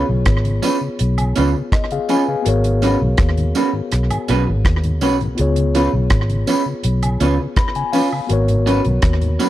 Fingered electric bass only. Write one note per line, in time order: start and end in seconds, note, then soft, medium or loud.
0.09 0.25 B1 medium
0.26 0.59 G#1 medium
1.01 1.32 B1 medium
1.38 1.53 C#2 medium
2.46 2.95 G#1 loud
3.02 3.17 B1 medium
3.19 3.51 D#2 medium
3.93 4.09 B1 medium
4.29 4.45 B1 medium
4.48 4.63 G#1 medium
4.65 5.03 D#2 medium
5.03 5.35 B1 medium
5.39 5.88 C#2 loud
5.93 6.09 B1 medium
6.11 6.43 G#1 medium
6.85 7.17 B1 medium
7.21 7.37 C#2 medium
8.30 8.79 G#1 loud
8.86 9.02 B1 medium
9.03 9.36 D#2 medium